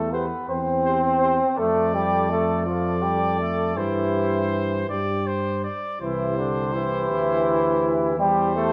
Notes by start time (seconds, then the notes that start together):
Already playing: E2 A3 A4
0.13 B3 G4 B4 C5
0.49 E2 C4 C5
0.85 G4 C5
1.22 G4 C5
1.58 F2 A3 A4 D5
1.94 G3 G4
2.30 A3 A4
2.65 F3 F4 A4 D5
3.02 G3 G4
3.39 A3 A4
3.76 G2 E3 E4 G4 C5
4.89 G2 G4 D5
5.27 C5
5.64 D5
6.01 C2 E3 E4 G4 C5
6.38 D3 D4
6.74 E3 E4
7.09 D2
8.18 E2 G3 G4 C5
8.55 A3 A4